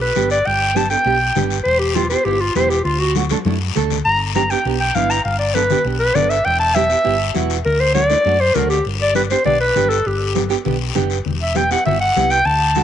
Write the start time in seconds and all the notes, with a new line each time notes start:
0.02 B4
0.15 G1 B3 D4 G4, high conga, short guiro
0.30 D5, short guiro
0.45 G1 G5, high conga, long guiro
0.75 B3 D4 G4 A5, high conga, short guiro
0.90 B3 D4 A4 G5, short guiro
1.05 B1 B3 D4 G4, high conga, long guiro
1.35 G1 B3 D4 G4, high conga, low conga, short guiro
1.50 short guiro
1.64 E1 C5, high conga, long guiro
1.79 G4
1.95 B3 E4 F4 G4, high conga, short guiro
2.10 B3 E4 G4 C5, short guiro
2.25 G1 B3 E4 G4, high conga, long guiro
2.41 F4
2.55 E1 B3 E4 G4 C5, high conga, short guiro
2.70 G4, short guiro
2.84 D2 F4, high conga, long guiro
3.00 F#4
3.15 A3 D4 F#4, high conga, short guiro
3.29 A3 D4 A4, high conga, short guiro
3.45 F#2 A3 D4 E4, high conga, long guiro
3.75 D2 A3 D4 A4, low conga, short guiro
3.90 low conga, short guiro
4.05 G1 A#5, high conga, long guiro
4.34 B3 D4 G4 A#5, high conga, short guiro
4.50 B3 D4 G4 G5, short guiro
4.65 B1 B3 D4 G4, high conga, long guiro
4.80 G5
4.95 G1 B3 D4 E4 F5, high conga, short guiro
5.10 A#5, short guiro
5.25 G1 F5, high conga, long guiro
5.39 D5
5.55 B3 D4 A4 B4, high conga, short guiro
5.70 B3 D4 G4, low conga, short guiro
5.85 B1 B3 D4 G4, high conga, long guiro
6.00 B4
6.15 G1 B3 D4 A4 D5, high conga, low conga, short guiro
6.30 E5, short guiro
6.45 E1 G5, high conga, long guiro
6.60 A5
6.74 B3 E4 G4 E5, high conga, short guiro
6.89 B3 E4 G4, short guiro
7.04 G1 B3 E4 G4, high conga, long guiro
7.34 E1 B3 E4 F#4, high conga, short guiro
7.50 short guiro
7.65 D2 A#4, high conga, long guiro
7.80 C5
7.94 A3 D4 F#4 D5, high conga, short guiro
8.10 A3 D4 E4, short guiro
8.25 F#2 A3 D4 F#4, long guiro
8.41 C5
8.54 D2 A3 D4 F#4 A#4, high conga, low conga, short guiro
8.70 G4, short guiro
8.85 G1, high conga, long guiro
9.02 D5
9.14 B3 D4 G4 B4, high conga, short guiro
9.30 B3 D4 G4 C5, short guiro
9.45 B1 B3 D4 G4 D5, high conga, low conga, long guiro
9.61 B4
9.76 G1 B3 D4 G4, high conga, low conga, short guiro
9.89 A4, short guiro
10.05 G1 G4, high conga, long guiro
10.35 B3 D4 G4, high conga, short guiro
10.49 B3 D4 G4, short guiro
10.65 B1 B3 D4 G4, high conga, low conga, long guiro
10.95 F#1 B3 D4 G4, high conga, low conga, short guiro
11.10 short guiro
11.25 E1, high conga, low conga, long guiro
11.42 E5
11.55 B3 E4 G4 G5, high conga, short guiro
11.71 B3 E4 G4 F#5, short guiro
11.85 G1 B3 E4 F#4 E5, high conga, low conga, long guiro
12.01 F#5
12.16 C2 B3 E4 G4, high conga, short guiro
12.30 G5, short guiro
12.45 D2 A5, high conga, long guiro
12.75 A3 D4 F#4, high conga, short guiro